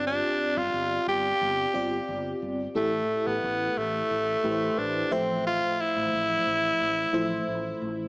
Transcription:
<<
  \new Staff \with { instrumentName = "FM electric piano" } { \time 4/4 \key f \lydian \tempo 4 = 89 <g, c' f' g' d''>4 r4. <c' f' g' d''>4 r8 | <a, a e' g' a'>4. r4 <a e' g' b' c''>4 <a, f a c'' e''>8~ | <a, f a c'' e''>4 r4. <f a e' c''>4 r8 | }
  \new Staff \with { instrumentName = "Tenor saxophone" } { \time 4/4 \key f \lydian d'8. f'8. g'2 r8 | a8. b8. a4. d'8 c'8 | f'8 e'2. r8 | }
  \new Staff \with { instrumentName = "Fretless electric bass" } { \clef bass \time 4/4 \key f \lydian g,,8 r16 g,,16 g,,8 g,,8 g,,8 g,,8 g,,8 g,,8 | a,,8 r16 a,,16 a,,8 a,,8 a,,8 a,,8 a,,8 a,,8~ | a,,8 r16 a,,16 a,,8 a,,8 a,,8 a,,8 a,,8 a,,8 | }
>>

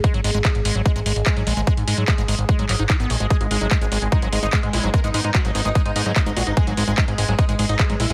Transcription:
<<
  \new Staff \with { instrumentName = "Supersaw synth" } { \time 4/4 \key gis \minor \tempo 4 = 147 r1 | r1 | gis'16 gis16 gis16 gis16 dis'16 gis16 gis16 gis16 dis'16 gis16 gis16 dis'16 gis16 gis16 e'16 gis16 | ais'16 dis'16 dis'16 dis'16 fis'16 dis'16 dis'16 dis'16 dis'16 dis'16 dis'16 dis'16 dis'16 dis'16 fis'16 dis'16 |
gis'16 gis16 gis16 gis16 dis'16 gis16 gis16 gis16 dis'16 gis16 gis16 dis'16 gis16 gis16 e'16 gis16 | }
  \new Staff \with { instrumentName = "Synth drone" } { \time 4/4 \key gis \minor <gis gis'>1~ | <gis gis'>1 | b1~ | b1~ |
b1 | }
  \new Staff \with { instrumentName = "Acid bass" } { \clef bass \time 4/4 \key gis \minor gis16 fis16 gis16 gis16 gis16 r16 gis16 fis16 gis16 gis16 gis16 r16 gis16 fis16 gis16 gis16 | gis16 r16 gis16 fis16 gis16 gis16 gis16 r16 gis16 fis16 fis16 dis'16 dis'16 b16 gis16 gis16 | gis16 r16 gis16 fis16 gis16 gis16 gis16 r16 gis16 fis16 gis16 gis16 gis16 r16 gis16 fis16 | gis16 gis16 gis16 r16 gis16 fis16 gis16 gis16 gis16 r16 gis16 fis16 gis16 gis16 gis16 r16 |
gis16 fis16 gis16 gis16 gis16 r16 gis16 fis16 gis16 gis16 gis16 r16 gis16 fis16 gis16 gis16 | }
  \new Staff \with { instrumentName = "Analog synth bass" } { \clef bass \time 4/4 \key gis \minor r16 gis,,16 gis,,16 gis,,16 r16 gis,,16 gis,,16 gis,,16 r16 gis,,16 gis,,16 gis,,16 r16 gis,16 ais,,16 gis,,16 | r16 gis,16 gis,16 gis,16 r16 gis,,16 gis,,16 gis,,16 r16 gis,16 gis,,16 gis,,16 r16 gis,,16 ais,,16 gis,,16 | r16 gis,,16 gis,,16 gis,,16 r16 gis,,16 gis,,16 gis,,16 r16 gis,,16 gis,,16 gis,,16 r16 gis,16 ais,,16 gis,,16 | r16 gis,16 gis,16 gis,16 r16 gis,,16 gis,,16 gis,,16 r16 gis,16 gis,16 gis,16 r16 gis,,16 ais,,16 gis,,16 |
r16 gis,,16 gis,,16 gis,,16 r16 gis,,16 gis,,16 gis,,16 r16 gis,,16 gis,,16 gis,,16 r16 gis,16 ais,,16 gis,,16 | }
  \new DrumStaff \with { instrumentName = "Drums" } \drummode { \time 4/4 <hh bd>16 hh16 hho16 hh16 <hc hh bd>16 hh16 hho16 hh16 <hh bd>16 hh16 hho16 hh16 <hc hh bd>16 hh16 hho16 hh16 | <hh bd>16 hh16 hho16 hh16 <hc hh bd>16 hh16 hho16 hh16 <hh bd>16 hh16 <hc hho>16 hh16 <hc hh bd>16 hh16 hho16 hh16 | <hh bd>16 hh16 hho16 hh16 <hc hh bd>16 hh16 hho16 hh16 <hh bd>16 hh16 hho16 hh16 <hc hh bd>16 hh16 hho16 hh16 | <hh bd>16 hh16 hho16 hh16 <hc hh bd>16 hh16 hho16 hh16 <hh bd>16 hh16 hho16 hh16 <hc hh bd>16 hh16 hho16 hh16 |
<hh bd>16 hh16 hho16 hh16 <hc hh bd>16 hh16 hho16 hh16 <hh bd>16 hh16 hho16 hh16 <hc hh bd>16 hh16 hho16 hh16 | }
>>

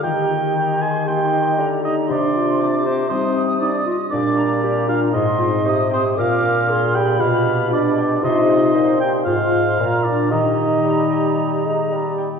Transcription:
<<
  \new Staff \with { instrumentName = "Flute section" } { \time 4/4 \key ees \major \tempo 4 = 117 bes''4 bes''8 c'''8 c'''4 bes''8 bes''8 | c'''4 d'''4 ees'''2 | d'''8 bes''8 bes''4 c'''4 ees'''8 ees'''8 | d'''4 c'''8 ces'''2~ ces'''8 |
c'''8 c'''4. c'''4 bes''4 | bes''2.~ bes''8 r8 | }
  \new Staff \with { instrumentName = "Oboe" } { \time 4/4 \key ees \major g''4. aes''8 g''4. ees''8 | d''4. c''8 c''8 r8 d''8 r8 | d''4. f''8 ees''4. c''8 | f''4. g''8 f''4 d''4 |
ees''4. g''8 f''4. d''8 | ees''2.~ ees''8 r8 | }
  \new Staff \with { instrumentName = "Clarinet" } { \time 4/4 \key ees \major g'4 g'4 ees'4 g'4 | g'8 f'4 r8 ees'4 ees'8 f'8 | g'4 g'8 d'8 ees'8 f'8 g'4 | bes'4 aes'4 g'4 g'4 |
f'4 ees'8 ees'8 f'8 r8 f'4 | g'2.~ g'8 r8 | }
  \new Staff \with { instrumentName = "Harp" } { \time 4/4 \key ees \major <ees bes bes'>8 ees'8 bes'8 g''8 bes8 ees'8 bes'8 g''8 | c8 c'8 g'8 ees''8 g8 c'8 g'8 ees''8 | bes,8 d'8 bes'8 g''8 aes,8 c'8 c''8 g''8 | bes,8 d'8 bes'8 f''8 b,8 d'8 d''8 g''8 |
c8 ees'8 c''8 g''8 aes,8 <f' c''>8 bes,8 <f' bes'>8 | ees8 ees'8 bes'8 g''8 bes8 ees'8 bes'8 g''8 | }
  \new Staff \with { instrumentName = "French horn section" } { \time 4/4 \key ees \major g'4. aes'8 g'4. ees'8 | d'4. c'8 c'4 d'8 r8 | d'4. f'8 ees'4. c'8 | f'4. g'8 f'4 d'4 |
ees'4. g'8 f'4. d'8 | ees'2.~ ees'8 r8 | }
  \new Staff \with { instrumentName = "Bassoon" } { \clef bass \time 4/4 \key ees \major ees2. d4 | c2.~ c8 r8 | bes,2 aes,4 c4 | bes,2 b,2 |
c4 bes,4 aes,4 bes,4 | ees4 g4. aes8 g4 | }
>>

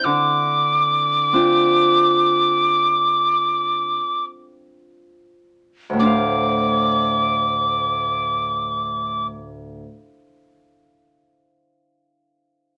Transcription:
<<
  \new Staff \with { instrumentName = "Tin whistle" } { \time 4/4 \key d \minor \tempo 4 = 36 d'''2. r4 | d'''1 | }
  \new Staff \with { instrumentName = "Harp" } { \time 4/4 \key d \minor d4 <c' d' f'>2. | <d, a, a d' c'' f''>1 | }
>>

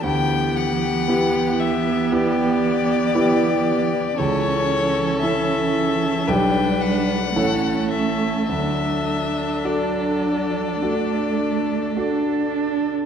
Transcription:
<<
  \new Staff \with { instrumentName = "Violin" } { \time 4/4 \key d \major \tempo 4 = 57 g''8 fis''4 e''8 d''2 | cis''4 e''4 g''8 fis''4 e''8 | e''4 d''2~ d''8 r8 | }
  \new Staff \with { instrumentName = "Violin" } { \time 4/4 \key d \major g'1 | a'2 b'4 a'4~ | a'1 | }
  \new Staff \with { instrumentName = "Grand piano" } { \time 4/4 \key d \major d,4 <b e' g'>4 <b e' g'>4 <b e' g'>4 | cis,4 <cis' e' a'>4 <b,, d' g'>4 <a,, cis' e' a'>4 | d,4 <d' fis' a'>4 <d' fis' a'>4 <d' fis' a'>4 | }
  \new Staff \with { instrumentName = "Viola" } { \time 4/4 \key d \major b1 | cis'2 d'4 cis'4 | d'1 | }
  \new Staff \with { instrumentName = "Cello" } { \clef bass \time 4/4 \key d \major e1 | e2 g4 a4 | fis4 fis4 a4 d'4 | }
>>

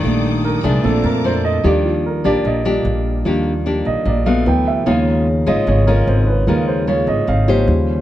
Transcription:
<<
  \new Staff \with { instrumentName = "String section" } { \time 4/4 \key bes \major \tempo 4 = 149 <a' g'' d''' ees'''>2 <a'' bes'' d'''>2 | \key ees \major r1 | r1 | r1 |
r1 | }
  \new Staff \with { instrumentName = "Grand piano" } { \time 4/4 \key bes \major r4 bes'8 aes'8 a'8 bes'8 c''8 ees''8 | \key ees \major d''8 f'8 bes'8 d''8 ees''8 r4. | r4. ees''8 d''8 f''8 g''8 fes''8 | f''4. ees''8 des''8 bes'8 c''8 ces''8 |
bes'8 c''8 des''8 ees''8 f''8 r4. | }
  \new Staff \with { instrumentName = "Grand piano" } { \clef bass \time 4/4 \key bes \major <ees g a d'>8 r4. <a c' d'>2 | \key ees \major <f g d'>2~ <f g d'>8 <f g d'>8 r4 | <f g d'>2. <fes fis b>4 | <ees f bes>4. r2 r8 |
<ees f bes>4. r4 <ees f bes>8 <des f g>8 r8 | }
  \new Staff \with { instrumentName = "Nylon-string guitar" } { \time 4/4 \key bes \major << { <ees a d'>4. <f a d'>4. <f a d'>4 | \key ees \major <bes d' g'>4 r8 <bes d' g'>4 <bes d' g'>4. | <bes d' g'>8 r8 <bes d' g'>4. <a ces' ges'>4. | <aes des' f'>4 r8 <aes des' f'>4 <aes des' f'>4. |
<aes des' f'>4 <aes des' f'>4 r8 <des' g' c''>4. | } \\ { bes,2 bes,2 | ees2 bes,2 | ees2 bes,4 r4 | des2 des2 |
des2 des4 r4 | } >> }
  \new Staff \with { instrumentName = "Upright bass" } { \clef bass \time 4/4 \key bes \major bes,,4. c,8 bes,,8 f,4. | \key ees \major ees,4. bes,,16 r16 bes,,4 bes,,4 | ees,4. bes,,16 r16 bes,,4 d,4 | ees,4. aes,,16 r16 aes,,4 aes,,4 |
ees,4. aes,,16 r16 aes,,4 ees,4 | }
>>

